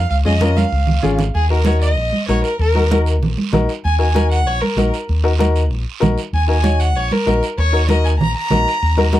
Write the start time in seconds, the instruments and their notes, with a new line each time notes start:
0.10 fingered electric bass C#2, violin F5, high conga, long guiro
0.25 fingered electric bass F2, upright piano C#4 F4 G#4, violin D#5, high conga
0.41 upright piano C#4 F4 A#4, high conga, short guiro
0.56 violin F5, high conga, short guiro
0.72 fingered electric bass C#2, long guiro
0.87 low conga
1.02 fingered electric bass G#1, upright piano C#4 F4 G#4, low conga, short guiro
1.19 low conga, short guiro
1.34 fingered electric bass D#2, violin G#4, high conga, long guiro
1.50 upright piano D#4 F#4 A#4, violin A#4
1.65 upright piano D#4 F#4 A#4, violin C#5, high conga, short guiro
1.82 violin D#5, short guiro
1.97 fingered electric bass A#1, high conga, long guiro
2.12 high conga
2.28 fingered electric bass A#1, upright piano D#4 F#4 A#4, violin C#5, high conga, short guiro
2.44 violin A#4, short guiro
2.59 fingered electric bass D#2, violin A#4, high conga, long guiro
2.75 upright piano D#4 F#4 A#4, high conga
2.90 upright piano D#4 F#4 A#4, high conga, short guiro
3.06 short guiro
3.22 fingered electric bass A#1, high conga, low conga, long guiro
3.37 high conga
3.52 fingered electric bass A#1, upright piano D#4 F#4 A#4, high conga, low conga, short guiro
3.69 short guiro
3.85 fingered electric bass D#2, violin G#5, high conga, long guiro
3.98 upright piano D#4 F#4 A#4, violin G#5
4.14 upright piano D#4 F#4 A#4, high conga, short guiro
4.31 violin F#5, short guiro
4.47 fingered electric bass A#1, violin C#5, high conga, long guiro
4.62 violin A#4, high conga
4.76 fingered electric bass A#1, upright piano D#4 F#4 A#4, high conga, short guiro
4.94 short guiro
5.08 fingered electric bass D#2, high conga, long guiro
5.24 upright piano D#4 F#4 A#4
5.39 upright piano D#4 F#4 A#4, high conga, short guiro
5.56 short guiro
5.71 fingered electric bass A#1, high conga, long guiro
6.00 fingered electric bass A#1, upright piano D#4 F#4 A#4, high conga, low conga, short guiro
6.18 short guiro
6.33 fingered electric bass D#2, violin G#5, high conga, long guiro
6.47 upright piano D#4 F#4 A#4, violin G#5
6.63 upright piano D#4 F#4 C#5, high conga, short guiro
6.80 violin F#5, short guiro
6.96 fingered electric bass A#1, violin C#5, high conga, long guiro
7.11 violin A#4, high conga
7.26 fingered electric bass A#1, upright piano D#4 F#4 A#4, high conga, short guiro
7.43 short guiro
7.58 fingered electric bass D#2, violin C#5, high conga, long guiro
7.72 upright piano D#4 F#4 A#4
7.89 upright piano D#4 F#4 A#4, violin D#5, high conga, short guiro
8.04 violin G#5, short guiro
8.20 fingered electric bass A#1, violin A#5, high conga, low conga, long guiro
8.37 violin A#5
8.50 fingered electric bass A#1, upright piano D#4 F#4 A#4, high conga, low conga, short guiro
8.68 short guiro
8.82 fingered electric bass D#2, high conga, long guiro
8.97 upright piano D#4 F#4 A#4, high conga
9.12 upright piano D#4 F#4 A#4, high conga, short guiro